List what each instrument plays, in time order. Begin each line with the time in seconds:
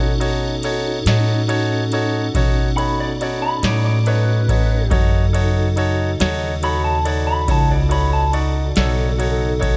Already playing: upright bass B2, tonewheel organ C#4 D#4 F#4 A4, grand piano D#4 F#4 A4 C#5
0.20 grand piano D#4 F#4 A4 C#5, ride
0.63 grand piano D#4 F#4 A4 C#5, ride
1.06 upright bass A2, grand piano D#4 F#4 A4 C#5, snare, ride
1.48 grand piano D#4 F#4 A4 C#5, ride
1.92 grand piano D#4 F#4 A4 C#5, ride
2.35 upright bass B2, grand piano D#4 F#4 A4 C#5, kick, ride
2.77 grand piano D#4 F#4 A4 C#5, clean electric guitar B5, ride
3.00 clean electric guitar D5
3.21 grand piano D#4 F#4 A4 C#5, clean electric guitar D5, ride
3.42 clean electric guitar B5
3.62 upright bass A2, grand piano D#4 F#4 A4 C#5, clean electric guitar D5, snare, ride
3.85 clean electric guitar D5
4.06 grand piano D#4 F#4 A4 C#5, clean electric guitar B4, ride
4.49 grand piano D#4 F#4 A4 C#5, kick, ride
4.90 upright bass F#2, tonewheel organ C#3 D#4 F#4 A4, grand piano D#4 F#4 A4 C#5, kick, ride
5.33 grand piano D#4 F#4 A4 C#5, ride
5.76 grand piano D#4 F#4 A4 C#5, ride
6.20 upright bass D#2, grand piano D#4 F#4 A4 C#5, snare, ride
6.63 grand piano D#4 F#4 A4 C#5, clean electric guitar B5, ride
6.84 clean electric guitar A5
7.05 grand piano D#4 F#4 A4 C#5, clean electric guitar D5, ride
7.27 clean electric guitar B5
7.48 upright bass C#2, grand piano D#4 F#4 A4 C#5, clean electric guitar A5, kick, ride
7.71 clean electric guitar D5
7.89 grand piano D#4 F#4 A4 C#5, clean electric guitar B5, ride
8.13 clean electric guitar A5
8.33 grand piano D#4 F#4 A4 C#6, clean electric guitar D5, ride
8.76 upright bass B1, grand piano D#4 F#4 A4 C#5, clean electric guitar A4, snare, ride
9.18 grand piano D#4 F#4 A4 C#5, ride
9.59 grand piano D#4 F#4 A4 C#5, kick, ride